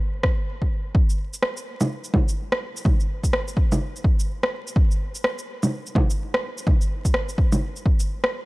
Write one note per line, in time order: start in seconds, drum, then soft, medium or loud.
0.23 kick medium
0.23 cross-stick medium
0.62 kick medium
0.95 kick loud
1.10 shaker soft
1.33 shaker medium
1.42 cross-stick loud
1.57 shaker soft
1.81 low bongo medium
1.81 shaker medium
2.04 shaker soft
2.14 kick loud
2.14 low bongo medium
2.29 shaker medium
2.52 cross-stick loud
2.77 shaker medium
2.85 kick loud
2.85 low bongo soft
3.00 shaker soft
3.24 kick medium
3.24 shaker medium
3.33 cross-stick loud
3.48 shaker soft
3.57 kick loud
3.72 low bongo medium
3.72 shaker medium
3.96 shaker soft
4.04 kick loud
4.20 shaker medium
4.43 cross-stick loud
4.67 shaker medium
4.76 kick loud
4.91 shaker soft
5.15 shaker medium
5.24 cross-stick loud
5.39 shaker soft
5.63 low bongo medium
5.63 shaker medium
5.87 shaker soft
5.95 kick loud
5.95 low bongo medium
6.10 shaker medium
6.34 cross-stick loud
6.58 shaker medium
6.67 kick loud
6.67 low bongo soft
6.81 shaker soft
7.05 kick medium
7.05 shaker medium
7.14 cross-stick loud
7.29 shaker soft
7.38 kick loud
7.52 low bongo soft
7.52 shaker medium
7.76 shaker soft
7.86 kick loud
8.00 shaker medium
8.24 cross-stick loud